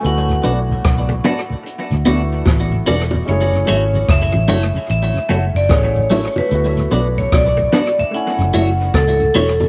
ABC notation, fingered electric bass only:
X:1
M:4/4
L:1/16
Q:"Swing 16ths" 1/4=74
K:F#m
V:1 name="Fingered electric bass" clef=bass
D,,2 B,,,2 B,,,2 z3 D,, D,,2 A,,,2 E,,,2 | F,,,2 G,,,2 F,,, A,,, F,,, z A,,, z F,,, F,,, A,,,3 z | D,,2 B,,,2 B,,,2 z3 F,,, F,,,2 C,,2 E,,,2 |]